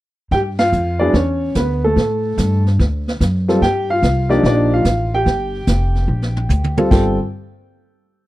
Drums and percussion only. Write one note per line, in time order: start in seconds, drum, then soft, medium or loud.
0.31 brush sweep soft
0.31 kick soft
0.31 snare soft
0.58 snare medium
0.58 ride medium
0.72 hi-hat pedal soft
1.14 brush sweep soft
1.14 kick soft
1.14 snare soft
1.55 kick soft
1.55 snare medium
1.55 hi-hat pedal soft
1.97 brush sweep soft
1.97 kick soft
1.97 snare soft
2.38 kick soft
2.38 snare medium
2.38 hi-hat pedal medium
2.66 snare soft
2.79 brush sweep soft
2.79 kick soft
2.79 snare soft
3.08 snare soft
3.20 kick soft
3.20 snare medium
3.20 hi-hat pedal medium
3.49 snare soft
3.62 brush sweep soft
3.62 kick soft
3.62 snare soft
4.03 kick soft
4.03 snare medium
4.03 hi-hat pedal soft
4.30 snare soft
4.44 brush sweep soft
4.44 kick soft
4.44 snare soft
4.85 kick soft
4.85 snare medium
4.85 hi-hat pedal medium
5.26 brush sweep soft
5.26 kick soft
5.26 snare soft
5.67 kick soft
5.67 snare medium
5.67 hi-hat pedal medium
5.95 snare soft
6.22 snare soft
6.37 mid tom medium
6.50 hi-hat pedal medium
6.50 high tom medium
6.64 high tom medium
6.77 high tom medium
6.91 kick medium
6.91 snare medium
6.91 crash medium